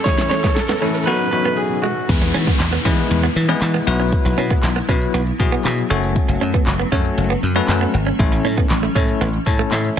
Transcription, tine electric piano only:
0.05 0.53 E3 medium
0.05 0.53 A3 medium
0.05 0.53 C#4 medium
0.05 0.53 E4 medium
0.82 1.07 E3 medium
0.82 1.07 A3 medium
0.82 1.07 C#4 medium
0.82 1.07 E4 medium
1.07 1.28 F#3 medium
1.07 1.28 B3 medium
1.07 1.28 D#4 medium
1.07 1.28 F#4 medium
1.32 1.80 F#3 medium
1.32 1.80 B3 medium
1.32 1.80 D#4 medium
1.32 1.81 F#4 medium
2.09 2.57 G#3 medium
2.09 2.57 B3 medium
2.09 2.57 E4 medium
2.09 2.57 G#4 medium
2.09 2.57 B4 medium
2.85 3.25 G#3 medium
2.85 3.25 B3 medium
2.85 3.25 E4 medium
2.85 3.25 G#4 medium
2.85 3.25 B4 loud
3.48 3.87 G#3 medium
3.48 3.86 B3 medium
3.48 3.86 E4 medium
3.48 3.87 G#4 medium
3.48 3.86 B4 loud
3.87 4.68 F#3 loud
3.87 4.68 B3 medium
3.87 4.68 E4 medium
3.87 4.68 F#4 medium
3.87 4.68 B4 loud
4.88 5.20 F#3 medium
4.88 5.20 B3 medium
4.88 5.20 E4 medium
4.88 5.21 F#4 medium
4.88 5.21 B4 loud
5.39 5.87 F#3 loud
5.39 5.87 B3 medium
5.39 5.87 E4 medium
5.39 5.87 F#4 medium
5.39 5.87 G#4 loud
5.90 6.72 A3 loud
5.90 6.72 C#4 medium
5.90 6.72 F#4 medium
5.90 6.72 A4 medium
5.90 6.72 C#5 loud
6.92 7.32 A3 medium
6.92 7.32 C#4 medium
6.92 7.32 F#4 medium
6.92 7.32 A4 medium
6.92 7.32 C#5 loud
7.55 7.95 A3 loud
7.55 7.95 C#4 medium
7.55 7.95 F#4 medium
7.55 7.95 A4 medium
7.55 7.95 B4 loud
8.19 8.67 A3 medium
8.19 8.67 C#4 medium
8.19 8.67 E4 medium
8.19 8.67 A4 medium
8.19 8.67 C#5 loud
8.95 9.27 A3 medium
8.95 9.27 C#4 medium
8.95 9.27 E4 medium
8.95 9.27 A4 medium
8.95 9.27 C#5 loud
9.46 9.94 A3 medium
9.46 9.94 C#4 medium
9.46 9.94 E4 medium
9.46 9.94 A4 medium
9.46 9.94 C#5 loud
9.46 9.70 A5 medium
9.72 10.00 E5 medium

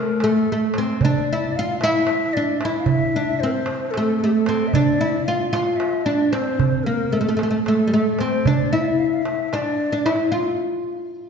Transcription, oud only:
0.00 0.22 A3 medium
0.24 0.50 A3 medium
0.52 0.78 A3 medium
0.78 1.01 C4 medium
1.05 1.30 D4 medium
1.33 1.58 E4 medium
1.59 1.83 F4 medium
1.84 2.36 E4 loud
2.37 2.60 D4 medium
2.65 3.16 E4 medium
3.16 3.42 D4 medium
3.43 3.97 C4 medium
3.97 4.22 A3 medium
4.24 4.47 A3 medium
4.49 4.73 C4 medium
4.75 5.00 D4 medium
5.01 5.28 E4 medium
5.28 5.52 F4 medium
5.53 6.05 F4 medium
6.06 6.31 D4 medium
6.33 6.86 C4 medium
6.86 7.12 A#3 medium
7.13 7.20 A3 medium
7.21 7.27 A3 medium
7.29 7.35 A3 medium
7.37 7.42 A3 medium
7.43 7.49 A3 medium
7.51 7.58 A3 medium
7.68 7.87 A3 medium
7.87 7.93 G3 medium
7.94 8.20 A3 medium
8.20 8.47 C4 medium
8.47 8.72 D4 medium
8.73 9.53 E4 medium
9.53 9.91 D4 medium
9.92 10.05 D4 medium
10.06 10.31 E4 medium
10.32 11.29 F4 medium

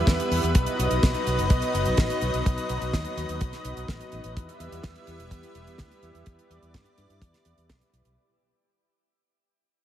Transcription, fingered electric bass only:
0.07 0.18 E2 medium
0.31 0.42 E2 medium
0.43 0.54 E2 medium
0.55 0.66 B1 medium
0.79 0.89 B1 medium
0.91 1.01 B1 medium
1.03 1.13 B1 medium
1.27 1.37 B1 medium
1.39 1.49 F#1 medium
1.50 1.61 B1 loud
1.74 1.85 F#1 medium
1.86 1.97 B1 medium
1.98 2.08 A1 medium
2.22 2.32 B1 medium
2.34 2.44 B1 medium
2.46 2.56 B1 medium
2.70 2.80 B1 medium
2.81 2.92 B1 medium
2.94 3.04 D#2 medium
3.17 3.27 D#2 medium
3.29 3.39 D#2 medium
3.41 3.52 B1 medium
3.65 3.75 B1 medium
3.77 3.87 B1 medium
3.88 3.99 A1 medium
4.12 4.23 A1 medium
4.24 4.35 A1 medium
4.37 4.47 E2 medium
4.60 4.70 E2 medium
4.72 4.82 E2 medium
4.84 4.94 E2 medium
5.07 5.18 E2 medium
5.19 5.30 E1 medium
5.31 5.42 E2 medium
5.55 5.65 E1 medium
5.67 5.77 E2 medium
5.80 5.90 D2 medium
6.03 6.13 E2 medium
6.15 6.25 E2 medium
6.27 6.37 E2 medium
6.50 6.61 E2 medium
6.62 6.73 E2 medium
6.74 6.85 G2 medium
6.98 7.08 G2 medium
7.10 7.20 G2 medium
7.22 7.32 E2 medium
7.46 7.56 E2 medium
7.58 7.68 E2 medium
7.93 8.04 B1 medium
8.05 8.16 B1 medium

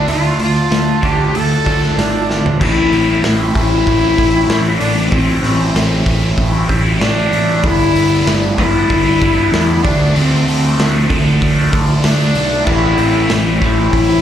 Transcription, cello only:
0.00 0.12 D4 medium
0.10 0.41 F4 loud
0.44 1.06 F4 loud
1.04 1.37 G4 medium
1.35 1.97 A4 loud
1.97 2.56 D4 medium
2.62 3.20 E4 loud
3.57 4.78 E4 loud
4.79 5.09 D4 medium
5.10 5.40 C4 loud
5.41 6.01 C4 medium
7.00 7.65 D4 loud
7.64 8.27 E4 loud
8.58 9.85 E4 loud
9.84 10.18 D4 loud
10.17 10.48 C4 loud
10.48 11.07 C4 medium
12.05 12.66 D4 loud
12.65 13.29 E4 loud
13.61 14.21 E4 loud

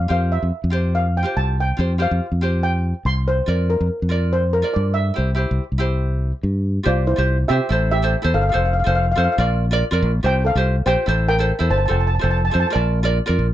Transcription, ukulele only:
0.08 0.47 F4 medium
0.08 0.48 G4 medium
0.08 0.48 C5 medium
0.70 1.04 F4 medium
0.70 1.05 G4 medium
0.70 1.05 C5 medium
1.23 1.56 F4 medium
1.23 1.56 G4 medium
1.23 1.57 C5 medium
1.77 1.91 F4 medium
1.77 1.92 G4 medium
1.77 1.92 C5 medium
1.98 2.25 F4 medium
1.98 2.25 G4 medium
1.98 2.26 C5 medium
2.41 2.93 F4 medium
2.41 2.93 G4 medium
2.41 2.94 C5 medium
3.46 3.85 F4 medium
3.46 3.86 A#4 medium
3.46 3.86 D5 medium
4.09 4.43 F4 medium
4.09 4.43 A#4 medium
4.09 4.44 D5 medium
4.62 4.95 F4 medium
4.62 4.95 A#4 medium
4.62 4.96 D5 medium
5.14 5.29 E4 medium
5.14 5.30 G4 medium
5.14 5.30 C5 medium
5.35 5.62 E4 medium
5.35 5.63 G4 medium
5.35 5.63 C5 medium
5.78 6.30 E4 medium
5.78 6.31 G4 medium
5.78 6.31 C5 medium
6.83 7.04 F4 medium
6.83 7.04 G4 medium
6.83 7.05 C5 medium
7.16 7.36 F4 medium
7.16 7.37 G4 medium
7.16 7.37 C5 medium
7.49 7.70 F4 medium
7.49 7.69 G4 medium
7.49 7.71 C5 medium
7.69 7.95 E4 medium
7.69 7.96 A4 medium
7.69 7.97 C5 medium
8.02 8.14 E4 medium
8.02 8.15 A4 medium
8.02 8.15 C5 medium
8.22 8.41 E4 medium
8.22 8.42 A4 medium
8.22 8.43 C5 medium
8.52 8.72 F4 medium
8.52 8.72 A4 medium
8.52 8.73 C5 medium
8.84 9.04 F4 medium
8.84 9.05 A4 medium
8.84 9.05 C5 medium
9.16 9.37 F4 medium
9.16 9.38 A4 medium
9.16 9.39 C5 medium
9.38 9.64 F4 medium
9.38 9.64 A#4 medium
9.38 9.65 D5 medium
9.71 9.83 F4 medium
9.71 9.83 A#4 medium
9.71 9.84 D5 loud
9.91 10.10 F4 medium
9.91 10.11 A#4 medium
9.91 10.11 D5 medium
10.23 10.42 F4 medium
10.23 10.42 G4 medium
10.23 10.42 C5 medium
10.56 10.74 F4 medium
10.56 10.74 G4 medium
10.56 10.75 C5 medium
10.86 11.07 F4 medium
10.86 11.06 G4 medium
10.86 11.08 C5 medium
11.06 11.32 E4 medium
11.06 11.32 A4 medium
11.06 11.33 C5 loud
11.39 11.51 E4 medium
11.39 11.51 A4 medium
11.39 11.52 C5 medium
11.59 11.78 E4 medium
11.59 11.79 A4 medium
11.59 11.79 C5 medium
11.88 12.08 F4 medium
11.88 12.09 A4 medium
11.88 12.09 C5 medium
12.19 12.40 F4 medium
12.19 12.41 A4 medium
12.19 12.41 C5 medium
12.51 12.69 F4 medium
12.51 12.71 A4 medium
12.51 12.75 C5 medium
12.70 12.98 F4 medium
12.70 12.99 A#4 medium
12.70 12.99 D5 medium
13.03 13.17 F4 medium
13.03 13.17 A#4 medium
13.03 13.18 D5 loud
13.26 13.46 F4 medium
13.26 13.46 A#4 medium
13.26 13.46 D5 medium

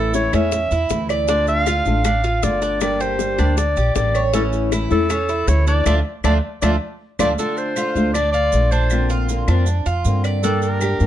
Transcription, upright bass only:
0.00 0.28 A1 medium
0.33 0.69 E2 medium
0.71 0.89 E2 medium
0.90 1.80 D2 medium
1.86 2.39 A1 medium
2.43 3.33 G1 medium
3.39 3.74 D2 medium
3.77 3.94 A#1 medium
3.96 4.85 A1 medium
4.91 5.44 E2 medium
5.48 5.83 D2 medium
5.86 6.00 D2 medium
6.24 6.38 D2 medium
6.62 6.77 D2 medium
7.19 7.34 D2 medium
7.95 8.49 D2 medium
8.53 9.42 A#1 medium
9.48 9.83 F2 medium
9.86 10.04 F2 medium
10.05 10.94 G2 medium
11.01 11.07 G2 medium

